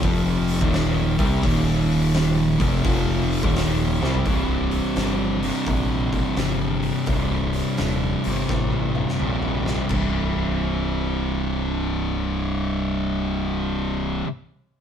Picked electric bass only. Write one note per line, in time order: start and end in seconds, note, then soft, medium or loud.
0.04 0.58 F1 loud
0.62 1.16 D#1 loud
1.19 1.42 C2 loud
1.43 2.56 D#1 loud
2.60 2.83 F1 loud
2.85 3.39 F1 loud
3.43 3.98 D#1 loud
4.02 4.24 C2 loud
4.26 4.80 C1 medium
4.97 5.50 G1 medium
5.67 6.21 A#1 loud
6.37 6.91 G1 medium
7.08 7.62 C1 loud
7.79 8.15 D#1 medium
8.26 8.45 G1 medium
8.49 9.04 A1 medium
9.21 9.75 A#1 medium
9.91 14.22 C1 medium